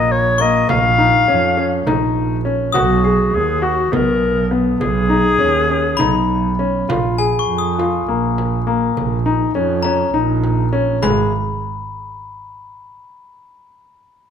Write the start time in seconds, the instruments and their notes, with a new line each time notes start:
Already playing: double bass A#1, grand piano A#3, clarinet D#5
0.12 clarinet C#5
0.38 grand piano A#3, clarinet D#5, glockenspiel C#6
0.69 double bass A#1, clarinet F5, frame drum
0.98 grand piano D#4
1.28 double bass F2, grand piano C#4
1.57 grand piano C#4
1.87 double bass A#1, grand piano D#4, frame drum
2.45 grand piano C#4, frame drum
2.72 double bass B1, grand piano F#4, glockenspiel D#6, frame drum
2.78 clarinet F#4
3.04 grand piano G#4
3.34 double bass D#2, clarinet G#4
3.62 grand piano F#4, clarinet F#4
3.92 double bass B1, grand piano B3, clarinet A#4, frame drum
4.51 grand piano B3, frame drum
4.80 double bass B1, clarinet G#4, frame drum
5.09 grand piano D#4, frame drum
5.39 double bass D#2, grand piano C#4, frame drum
5.70 grand piano C#4
5.97 double bass B1, grand piano D#4, glockenspiel B5, frame drum
6.59 grand piano C#4
6.89 double bass A#1, grand piano F4, frame drum
7.18 grand piano G#4, glockenspiel G#5
7.39 glockenspiel C#6
7.49 double bass F2
7.58 glockenspiel D#6
7.79 grand piano F4, frame drum
8.08 double bass A#1, grand piano A#3
8.38 frame drum
8.67 grand piano A#3
8.96 double bass A#1, frame drum
9.26 grand piano D#4
9.55 double bass F2, grand piano C#4
9.83 grand piano C#4, glockenspiel A#5, frame drum
10.13 double bass A#1, grand piano D#4
10.44 frame drum
10.73 grand piano C#4
11.02 double bass G#1, grand piano G#3, glockenspiel B5, frame drum